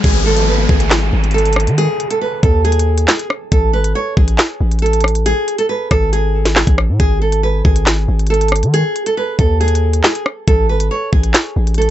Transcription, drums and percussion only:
0.04 kick, closed hi-hat
0.37 closed hi-hat
0.69 kick
0.80 closed hi-hat
0.90 snare, clap, closed hi-hat
1.24 closed hi-hat
1.31 closed hi-hat
1.38 closed hi-hat
1.46 closed hi-hat
1.53 cross-stick, closed hi-hat
1.60 closed hi-hat
1.67 closed hi-hat
1.78 closed hi-hat
2.00 closed hi-hat
2.11 closed hi-hat
2.43 kick, closed hi-hat
2.65 closed hi-hat
2.72 closed hi-hat
2.79 closed hi-hat
2.98 closed hi-hat
3.08 snare, clap
3.19 closed hi-hat
3.30 cross-stick
3.52 kick, closed hi-hat
3.84 closed hi-hat
4.17 kick
4.28 closed hi-hat
4.38 snare, clap, closed hi-hat
4.71 closed hi-hat
4.79 closed hi-hat
4.86 closed hi-hat
4.93 closed hi-hat
5.01 cross-stick, closed hi-hat
5.08 closed hi-hat
5.15 closed hi-hat
5.26 closed hi-hat
5.48 closed hi-hat
5.59 closed hi-hat
5.91 kick, cross-stick, closed hi-hat
6.13 closed hi-hat
6.45 snare, closed hi-hat
6.56 snare, clap
6.67 kick, closed hi-hat
6.78 cross-stick
7.00 kick, closed hi-hat
7.32 closed hi-hat
7.65 kick
7.76 closed hi-hat
7.86 snare, clap, closed hi-hat
8.19 closed hi-hat
8.27 closed hi-hat
8.34 closed hi-hat
8.41 closed hi-hat
8.48 cross-stick, closed hi-hat
8.56 closed hi-hat
8.63 closed hi-hat
8.74 closed hi-hat
8.96 closed hi-hat
9.06 closed hi-hat
9.39 kick, closed hi-hat
9.61 closed hi-hat
9.68 closed hi-hat
9.75 closed hi-hat
9.93 closed hi-hat
10.04 snare, clap
10.15 closed hi-hat
10.26 cross-stick
10.48 kick, closed hi-hat
10.80 closed hi-hat
11.13 kick
11.23 closed hi-hat
11.34 snare, clap, closed hi-hat
11.67 closed hi-hat
11.74 closed hi-hat
11.82 closed hi-hat

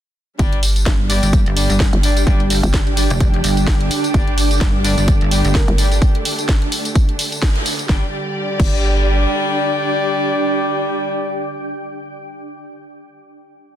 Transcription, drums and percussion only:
0.39 kick, closed hi-hat, tambourine
0.53 closed hi-hat
0.63 open hi-hat, tambourine
0.76 closed hi-hat, tambourine
0.86 kick, snare, closed hi-hat
1.10 open hi-hat, tambourine
1.23 closed hi-hat, tambourine
1.33 kick, closed hi-hat, tambourine
1.46 closed hi-hat
1.57 open hi-hat, tambourine
1.70 closed hi-hat, tambourine
1.80 kick, snare, closed hi-hat, tambourine
1.93 closed hi-hat
2.03 open hi-hat, tambourine
2.17 closed hi-hat, tambourine
2.27 kick, closed hi-hat, tambourine
2.40 closed hi-hat
2.50 open hi-hat, tambourine
2.63 closed hi-hat, tambourine
2.74 kick, snare, closed hi-hat
2.87 closed hi-hat
2.97 open hi-hat, tambourine
3.10 closed hi-hat, tambourine
3.20 kick, closed hi-hat, tambourine
3.34 closed hi-hat
3.44 open hi-hat, tambourine
3.57 closed hi-hat, tambourine
3.67 kick, snare, closed hi-hat, tambourine
3.81 closed hi-hat
3.91 open hi-hat, tambourine
4.04 closed hi-hat, tambourine
4.14 kick, closed hi-hat, tambourine
4.27 closed hi-hat
4.38 open hi-hat, tambourine
4.51 closed hi-hat, tambourine
4.61 kick, snare, closed hi-hat
4.84 open hi-hat, tambourine
4.98 closed hi-hat, tambourine
5.08 kick, closed hi-hat, tambourine
5.21 closed hi-hat
5.31 open hi-hat, tambourine
5.45 closed hi-hat, tambourine
5.55 kick, snare, closed hi-hat
5.68 closed hi-hat
5.78 open hi-hat, tambourine
5.92 closed hi-hat, tambourine
6.02 kick, closed hi-hat, tambourine
6.15 closed hi-hat
6.25 open hi-hat, tambourine
6.39 closed hi-hat, tambourine
6.49 kick, snare, closed hi-hat
6.62 closed hi-hat
6.72 open hi-hat, tambourine
6.85 closed hi-hat, tambourine
6.95 kick, closed hi-hat, tambourine
7.09 closed hi-hat
7.19 open hi-hat, tambourine
7.32 closed hi-hat, tambourine
7.42 kick, snare, closed hi-hat
7.56 closed hi-hat
7.66 open hi-hat, tambourine
7.79 closed hi-hat, tambourine
7.89 kick, snare
8.60 kick, crash

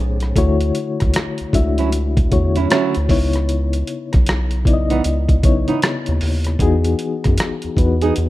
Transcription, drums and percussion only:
0.20 cross-stick, closed hi-hat
0.36 kick, closed hi-hat
0.61 closed hi-hat
0.75 closed hi-hat
1.00 kick, cross-stick, closed hi-hat
1.14 cross-stick, closed hi-hat
1.38 closed hi-hat
1.53 kick, closed hi-hat
1.78 closed hi-hat
1.92 closed hi-hat
2.17 kick, closed hi-hat
2.32 kick, closed hi-hat
2.56 closed hi-hat
2.70 cross-stick, closed hi-hat
2.95 closed hi-hat
3.09 kick, open hi-hat
3.33 cross-stick, closed hi-hat
3.49 closed hi-hat
3.73 closed hi-hat
3.87 closed hi-hat
4.13 kick, cross-stick, closed hi-hat
4.26 cross-stick, closed hi-hat
4.51 closed hi-hat
4.65 kick, closed hi-hat
4.90 closed hi-hat
5.04 closed hi-hat
5.29 kick, closed hi-hat
5.43 kick, closed hi-hat
5.68 closed hi-hat
5.82 cross-stick, closed hi-hat
6.06 closed hi-hat
6.21 open hi-hat
6.44 cross-stick, closed hi-hat
6.59 kick, closed hi-hat
6.84 closed hi-hat
6.99 closed hi-hat
7.24 kick, cross-stick, closed hi-hat
7.38 cross-stick, closed hi-hat
7.62 closed hi-hat
7.77 kick, closed hi-hat
8.01 closed hi-hat
8.16 closed hi-hat

